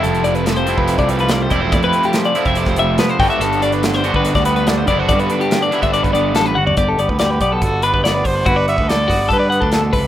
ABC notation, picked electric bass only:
X:1
M:4/4
L:1/16
Q:1/4=143
K:G
V:1 name="Picked electric bass" clef=bass
=F,,,6- F,,, F,,,2 C,,4- C,, E,,,2 | =F,,2 z4 z =F,,,2 F,,, F,,,2 z2 G,,, z | G,,,6- G,,, G,,,2 D,,4- D,, F,,,2 | G,,2 z4 z G,,,2 G,,, G,,,2 A,,,2 G,,,2 |
G,,,2 G,,, D,,3 B,,,2 G,,,3 G,,,3 G,,,2 | G,,,3 D,,3 G,,,2 G,,3 D,,3 ^C,,2 |]